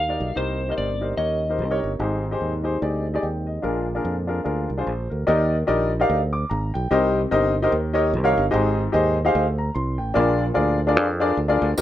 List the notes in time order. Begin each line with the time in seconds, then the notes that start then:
Already playing: D#2 G3 A#3 D#4 F5
0.08 D#4 G4 A#4 D5
0.20 B1
0.36 C2 C3 C4 D#4 G4 A#4 C5
0.69 D#4 G4 A#4 C5 D#5
0.78 G1 D5
1.01 D#4 G4 A#4 C5
1.17 D#2 D#3 C#4 D#4 G4 A#4 C#5 D#5
1.49 D#4 G4 A#4 C5
1.59 C2
1.71 D#4 G4 A#4 C#5
1.84 G1
1.99 G#1 G#2 G3 G#3 C4 D#4 G4 G#4 C5
2.31 D#4 G4 G#4 C5
2.41 D#2
2.64 D#4 G4 G#4 C5
2.82 D2 D#4 G4 G#4 D5
3.14 D#4 G4 G#4 D5
3.22 D#2 G5
3.47 D#5
3.62 A#1 A#2 D3 F3 A#3 D4 F4 G#4 A#4
3.94 D4 F4 G#4 A#4
4.05 F2
4.27 D4 F4 G#4 A#4
4.44 D2 D4 F4 G#4 A#4
4.70 C2
4.78 D4 F4 G#4 C5
4.85 A#1 C5
5.10 D2 A#4
5.27 D#2 D#3 D#4 G4 A#4 D5 D#5
5.67 A#1 D#4 G4 A#4 D5 D#5
6.00 D#4 G4 A#4 D5 F5
6.10 D2
6.33 D6
6.50 G#1 A#5
6.74 B1 G5
6.91 C2 C3 D#4 G4 A#4 C5 D#5
7.31 G1 D#4 G4 A#4 C5 D#5
7.62 D#4 G4 A#4 C5 D#5
7.71 D#2 D#3
7.93 D#4 G4 A#4 C#5 D#5
8.13 C2
8.24 D#4 G4 A#4 C#5 F5
8.38 G1
8.51 G#1 G#2 D#4 G4 G#4 C5 D#5
8.92 D#2 D#4 G4 G#4 C5 D#5
9.25 D#4 G4 G#4 C5 F5
9.35 D2
9.58 A#5
9.75 C2 C6
9.98 A1 G5
10.14 A#1 A#2 D4 F4 G#4 A#4 D5
10.54 D2 D4 F4 G#4 A#4 D5
10.87 D4 F4 G#4 A#4 D5
10.97 F2
11.20 D4 F4 G#4 A#4 D5
11.37 D2
11.48 D4 F4 G#4 A#4 D5
11.62 D2
11.77 D#2 D#3 D#4 G4 A#4 C5, tambourine